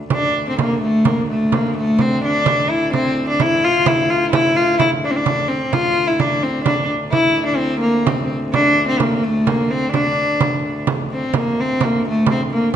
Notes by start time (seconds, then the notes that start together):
0.10 D2 D4, frame drum
0.35 frame drum
0.49 C4
0.59 A#3, frame drum
0.82 A3
1.05 A#3, frame drum
1.30 A3
1.52 A#3, frame drum
1.76 A3, frame drum
1.99 C4, frame drum
2.24 D4
2.46 frame drum
2.70 E4
2.93 C4, frame drum
3.17 frame drum
3.29 D4
3.40 E4, frame drum
3.65 F4
3.86 E4, frame drum
4.10 F4
4.32 E4, frame drum
4.56 F4
4.79 E4, frame drum
5.03 D4, frame drum
5.11 C4
5.17 D4
5.26 frame drum
5.48 C4, frame drum
5.73 D2 F4, frame drum
5.97 frame drum
6.08 E4
6.20 D4, frame drum
6.43 C4
6.65 D4, frame drum
7.12 E4, frame drum
7.36 frame drum
7.46 D4
7.56 C4
7.81 A#3
8.06 C4, frame drum
8.54 D4, frame drum
8.77 frame drum
8.88 C4
9.00 A#3, frame drum
9.24 A3
9.47 A#3, frame drum
9.71 C4
9.93 D4, frame drum
10.17 frame drum
10.41 frame drum
10.87 frame drum
11.10 C4, frame drum
11.34 D2 A#3, frame drum
11.61 C4
11.81 A#3, frame drum
12.08 A3
12.26 frame drum
12.31 C4
12.50 A#3, frame drum